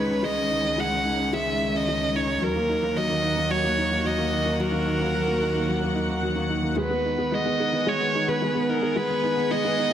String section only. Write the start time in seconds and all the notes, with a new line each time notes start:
Already playing: D#3 G#3 C#5
2.69 A#3 F#5
3.55 F#4
7.26 B3
7.60 G#4